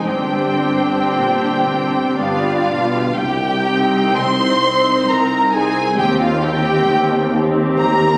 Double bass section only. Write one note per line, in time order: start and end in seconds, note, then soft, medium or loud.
0.07 2.15 G1 soft
2.19 2.97 G1 soft
3.17 4.05 C2 medium
4.16 4.99 C2 medium
5.09 5.87 C2 medium
5.97 6.76 D#2 medium
6.87 7.67 D#2 medium
7.79 8.18 D#2 medium